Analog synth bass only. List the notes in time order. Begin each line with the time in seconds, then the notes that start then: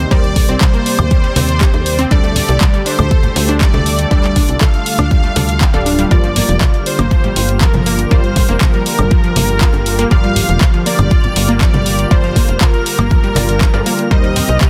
0.11 D#2
0.49 C2
0.99 D#2
1.36 D#2
1.74 D#2
2.11 D2
2.49 C2
2.99 D2
3.36 D2
3.74 D2
4.11 D2
4.49 C2
4.99 D2
5.36 D2
5.74 D1
6.11 G1
6.49 F1
6.99 G1
7.36 G1
7.74 G1
8.11 G1
8.49 F1
8.99 G1
9.36 G1
9.74 G1
10.11 G1
10.49 F1
10.99 G1
11.36 G1
11.74 G1
12.11 G1
12.49 F1
12.99 G1
13.36 G1
13.74 G2
14.11 D#2
14.49 C2